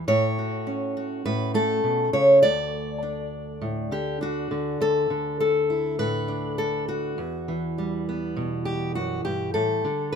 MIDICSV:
0, 0, Header, 1, 2, 480
1, 0, Start_track
1, 0, Key_signature, 2, "major"
1, 0, Tempo, 591716
1, 53, Time_signature, 4, 2, 24, 8
1, 8237, End_track
2, 0, Start_track
2, 0, Title_t, "Steel-string acoustic guitar"
2, 0, Program_c, 0, 25
2, 62, Note_on_c, 0, 45, 82
2, 65, Note_on_c, 0, 73, 103
2, 312, Note_on_c, 0, 66, 45
2, 542, Note_on_c, 0, 61, 44
2, 782, Note_off_c, 0, 66, 0
2, 785, Note_on_c, 0, 66, 51
2, 1009, Note_off_c, 0, 45, 0
2, 1014, Note_off_c, 0, 73, 0
2, 1018, Note_on_c, 0, 71, 86
2, 1019, Note_on_c, 0, 45, 63
2, 1251, Note_on_c, 0, 57, 67
2, 1253, Note_off_c, 0, 71, 0
2, 1256, Note_on_c, 0, 69, 88
2, 1487, Note_off_c, 0, 45, 0
2, 1491, Note_on_c, 0, 47, 54
2, 1727, Note_off_c, 0, 47, 0
2, 1727, Note_off_c, 0, 69, 0
2, 1730, Note_on_c, 0, 49, 63
2, 1730, Note_on_c, 0, 73, 88
2, 1946, Note_off_c, 0, 61, 0
2, 1964, Note_off_c, 0, 73, 0
2, 1967, Note_on_c, 0, 74, 100
2, 1970, Note_off_c, 0, 49, 0
2, 1979, Note_on_c, 0, 38, 70
2, 2455, Note_on_c, 0, 62, 43
2, 2932, Note_on_c, 0, 45, 64
2, 3171, Note_off_c, 0, 57, 0
2, 3174, Note_off_c, 0, 45, 0
2, 3175, Note_on_c, 0, 50, 57
2, 3178, Note_off_c, 0, 66, 0
2, 3181, Note_on_c, 0, 67, 75
2, 3405, Note_off_c, 0, 62, 0
2, 3415, Note_on_c, 0, 62, 44
2, 3421, Note_off_c, 0, 67, 0
2, 3427, Note_on_c, 0, 66, 68
2, 3648, Note_off_c, 0, 50, 0
2, 3658, Note_on_c, 0, 50, 58
2, 3871, Note_off_c, 0, 62, 0
2, 3888, Note_off_c, 0, 38, 0
2, 3897, Note_on_c, 0, 38, 65
2, 3900, Note_off_c, 0, 74, 0
2, 3902, Note_off_c, 0, 66, 0
2, 3906, Note_on_c, 0, 69, 93
2, 4129, Note_off_c, 0, 50, 0
2, 4138, Note_on_c, 0, 50, 55
2, 4374, Note_off_c, 0, 69, 0
2, 4384, Note_on_c, 0, 69, 86
2, 4623, Note_on_c, 0, 64, 42
2, 4857, Note_off_c, 0, 64, 0
2, 4857, Note_on_c, 0, 45, 57
2, 4860, Note_on_c, 0, 71, 96
2, 5096, Note_on_c, 0, 62, 43
2, 5330, Note_off_c, 0, 69, 0
2, 5339, Note_on_c, 0, 69, 84
2, 5581, Note_off_c, 0, 69, 0
2, 5585, Note_on_c, 0, 66, 67
2, 5793, Note_off_c, 0, 62, 0
2, 5820, Note_off_c, 0, 38, 0
2, 5823, Note_off_c, 0, 45, 0
2, 5824, Note_off_c, 0, 71, 0
2, 5824, Note_on_c, 0, 40, 68
2, 5825, Note_off_c, 0, 50, 0
2, 6070, Note_on_c, 0, 52, 57
2, 6314, Note_on_c, 0, 55, 45
2, 6543, Note_off_c, 0, 66, 0
2, 6560, Note_on_c, 0, 59, 46
2, 6785, Note_on_c, 0, 47, 58
2, 7020, Note_on_c, 0, 67, 75
2, 7260, Note_off_c, 0, 40, 0
2, 7260, Note_off_c, 0, 67, 0
2, 7263, Note_on_c, 0, 66, 74
2, 7270, Note_on_c, 0, 42, 53
2, 7498, Note_off_c, 0, 66, 0
2, 7501, Note_on_c, 0, 67, 77
2, 7505, Note_off_c, 0, 42, 0
2, 7510, Note_on_c, 0, 43, 62
2, 7711, Note_off_c, 0, 47, 0
2, 7734, Note_off_c, 0, 67, 0
2, 7737, Note_on_c, 0, 69, 86
2, 7744, Note_off_c, 0, 43, 0
2, 7745, Note_on_c, 0, 45, 73
2, 7747, Note_off_c, 0, 59, 0
2, 7980, Note_off_c, 0, 45, 0
2, 7983, Note_off_c, 0, 52, 0
2, 7986, Note_on_c, 0, 50, 60
2, 8210, Note_off_c, 0, 69, 0
2, 8237, Note_off_c, 0, 50, 0
2, 8237, Note_off_c, 0, 55, 0
2, 8237, End_track
0, 0, End_of_file